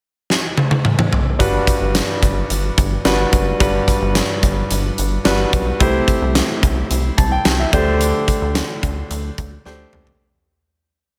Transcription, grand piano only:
1.39 2.18 G2 medium
1.39 2.07 G3 medium
1.39 2.07 D4 medium
1.39 2.07 F#4 medium
1.39 2.07 B4 medium
3.05 3.39 G3 medium
3.05 3.39 D4 medium
3.05 3.39 F#4 medium
3.05 3.39 B4 medium
3.60 4.39 G2 medium
3.60 4.27 G3 medium
3.60 4.27 D4 medium
3.60 4.28 F#4 medium
3.60 4.28 B4 medium
5.24 5.59 G3 medium
5.24 5.59 D4 medium
5.24 5.59 F#4 medium
5.24 5.59 B4 medium
5.79 6.59 C3 medium
5.79 6.47 A3 medium
5.79 6.47 E4 medium
5.79 6.48 G4 medium
5.79 6.48 C5 medium
7.18 7.31 A5 medium
7.32 7.58 G5 medium
7.60 7.86 E5 medium
7.73 8.52 D3 medium
7.73 8.61 A3 medium
7.73 8.61 D4 medium
7.73 8.61 G4 medium
7.73 8.62 C5 medium
9.65 9.99 A3 medium
9.65 9.99 D4 medium
9.65 9.99 G4 medium
9.65 10.00 C5 medium

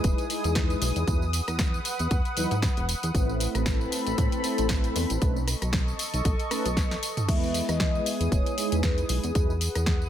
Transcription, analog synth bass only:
0.04 0.14 E1 medium
0.44 0.76 E2 medium
0.82 0.92 B1 loud
0.96 1.04 E2 medium
1.08 1.41 E2 loud
1.48 1.80 E2 medium
2.00 2.08 E2 medium
2.11 2.21 E2 medium
2.37 2.47 E2 medium
2.51 2.69 G#2 loud
2.77 2.95 E1 medium
3.03 3.11 E2 medium
3.15 3.48 A1 loud
3.55 3.87 A1 medium
4.07 4.15 A1 medium
4.18 4.28 A2 medium
4.59 4.90 A1 medium
4.96 5.06 E2 loud
5.10 5.18 A1 medium
5.22 5.55 B1 loud
5.62 5.94 B1 medium
6.14 6.22 B1 medium
6.25 6.35 B1 medium
6.66 6.97 B1 medium
7.28 7.62 E2 loud
7.69 8.01 E2 medium
8.20 8.28 E2 medium
8.32 8.42 E1 medium
8.72 9.04 E2 medium
9.10 9.20 B1 loud
9.24 9.32 E2 medium
9.35 9.69 E2 loud
9.76 10.08 E2 medium

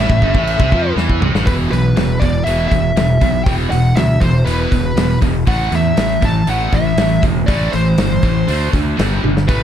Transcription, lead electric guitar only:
0.00 0.94 E5 medium
1.46 1.53 B4 medium
1.71 2.23 B4 medium
2.20 2.44 D5 medium
2.44 2.66 E5 medium
2.68 3.41 E5 medium
3.44 3.51 G5 loud
3.71 3.97 F#5 medium
3.96 4.22 E5 medium
4.20 4.45 C5 medium
4.46 5.18 B4 medium
5.48 5.74 F#5 medium
5.75 6.25 E5 medium
6.25 6.50 A5 medium
6.50 6.75 F#5 medium
6.74 7.20 E5 medium
7.47 7.73 D5 loud
7.71 8.68 C5 medium
9.48 9.63 B4 medium

